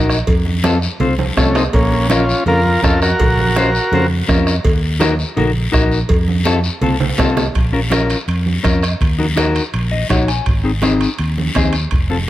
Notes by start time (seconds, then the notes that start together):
Already playing: A#1 D#4 F#4 A#4
0.10 bombo rim, short guiro
0.27 F2, bombo low, cowbell, high conga, long guiro
0.45 high conga
0.64 C4 F4 A4, bombo rim, high conga, short guiro
0.82 short guiro
1.00 C2 C4 F4 C5, cowbell, high conga, low conga, long guiro
1.18 high conga, high timbale
1.37 C2 A3 C4 C#4 F4 A4, bombo low, bombo rim, high conga, short guiro
1.55 C4 D#4, bombo rim, low timbale, short guiro
1.73 A#1 A#3 C#4, bombo low, cowbell, high conga, long guiro
1.92 high conga
2.09 C#4 F4 A#4, bombo rim, high conga, short guiro
2.29 short guiro
2.46 F2 C#4 F4 A#4, cowbell, high conga, low conga, long guiro
2.64 high conga
2.82 F2 C#4 F4 A4 A#4, bombo low, bombo rim, high conga, short guiro
3.02 F#4 A#4, bombo rim, short guiro
3.20 A#1, bombo low, cowbell, high conga, low conga, long guiro
3.38 high conga
3.56 C#4 F4 C5, bombo rim, high conga, short guiro
3.75 short guiro
3.92 F2 C#4 F4 C5, cowbell, high conga, low conga, long guiro
4.28 F2 C#4 F4 A#4, bombo low, bombo rim, high conga, low timbale, short guiro
4.47 bombo rim, short guiro
4.65 D#2, bombo low, cowbell, high conga, long guiro
5.00 D#4 F#4 A#4, bombo rim, high conga, short guiro
5.19 short guiro
5.37 A#1 D#4 F#4 A#4, cowbell, high conga, low conga, long guiro
5.72 A#1 D#4 F#4 A#4, bombo low, bombo rim, high conga, short guiro
5.92 short guiro
6.09 F2, bombo low, cowbell, high conga, long guiro
6.28 high conga
6.45 C4 F4 A4, bombo rim, high conga, short guiro
6.64 short guiro
6.81 C2 C4 F4 A4, cowbell, low conga, long guiro
7.00 low conga, high timbale
7.18 C2 C4 F4 A4, bombo low, bombo rim, low conga, low timbale, short guiro
7.37 bombo rim, low conga, low timbale, short guiro
7.55 A#1, bombo low, high conga, high timbale, long guiro
7.73 C#4 F4 A#4, high conga
7.90 C#4 F4 A#4, bombo rim, high conga, high timbale, short guiro
8.10 high timbale, short guiro
8.28 F2, high conga, high timbale, long guiro
8.46 high conga
8.63 F2 C#4 F4 A#4, bombo low, bombo rim, high conga, high timbale, short guiro
8.83 bombo rim, high timbale, short guiro
9.01 D#2, bombo low, high conga, high timbale, long guiro
9.19 D#4 F#4 A#4, high conga
9.36 D#4 F#4 A#4, bombo rim, high conga, high timbale, short guiro
9.55 high timbale, short guiro
9.74 A#1, high conga, high timbale, long guiro
9.91 D#5, high conga
10.10 A#1 D#4 F#4 C#5 F#5, bombo low, bombo rim, high conga, high timbale, low timbale, short guiro
10.28 G#5, high timbale, short guiro
10.46 G#1, bombo low, high conga, high timbale, long guiro
10.64 C4 D#4 G#4
10.82 C4 D#4 G#4, bombo rim, high conga, high timbale, short guiro
11.01 high timbale, short guiro
11.19 D#2, high conga, high timbale, long guiro
11.38 high conga
11.55 D#2 C4 D#4 G#4, bombo low, bombo rim, high conga, high timbale, low timbale, short guiro
11.73 high timbale, short guiro
11.91 F1, bombo low, high conga, high timbale, long guiro
12.10 C4 F4 A4, high conga